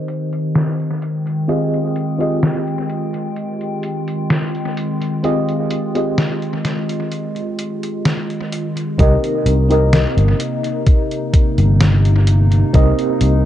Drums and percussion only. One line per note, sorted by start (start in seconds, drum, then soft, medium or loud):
0.08 closed hi-hat medium
0.33 closed hi-hat soft
0.55 snare loud
0.55 closed hi-hat soft
0.80 closed hi-hat soft
1.02 closed hi-hat medium
1.27 closed hi-hat soft
1.49 closed hi-hat soft
1.74 closed hi-hat soft
1.96 closed hi-hat medium
2.20 closed hi-hat soft
2.43 snare loud
2.43 closed hi-hat soft
2.67 closed hi-hat soft
2.90 closed hi-hat medium
3.14 closed hi-hat soft
3.36 closed hi-hat soft
3.61 closed hi-hat soft
3.83 closed hi-hat medium
4.08 closed hi-hat soft
4.30 snare loud
4.30 closed hi-hat soft
4.55 closed hi-hat soft
4.77 closed hi-hat medium
5.02 closed hi-hat soft
5.24 closed hi-hat soft
5.49 closed hi-hat soft
5.71 closed hi-hat medium
5.95 closed hi-hat soft
6.18 snare loud
6.18 closed hi-hat soft
6.42 closed hi-hat soft
6.65 snare medium
6.65 closed hi-hat medium
6.89 closed hi-hat soft
7.12 closed hi-hat soft
7.36 closed hi-hat soft
7.59 closed hi-hat medium
7.83 closed hi-hat soft
8.05 snare loud
8.05 closed hi-hat soft
8.30 closed hi-hat soft
8.52 closed hi-hat medium
8.77 closed hi-hat soft
8.99 kick loud
8.99 closed hi-hat medium
9.24 closed hi-hat soft
9.46 closed hi-hat loud
9.71 closed hi-hat soft
9.93 snare loud
9.93 closed hi-hat medium
10.18 closed hi-hat soft
10.40 closed hi-hat medium
10.64 closed hi-hat soft
10.86 kick loud
10.86 closed hi-hat medium
11.11 closed hi-hat soft
11.34 kick loud
11.34 closed hi-hat medium
11.58 closed hi-hat soft
11.80 snare loud
11.80 closed hi-hat medium
12.05 closed hi-hat soft
12.27 closed hi-hat medium
12.52 closed hi-hat soft
12.74 kick loud
12.74 closed hi-hat medium
12.99 closed hi-hat soft
13.21 closed hi-hat loud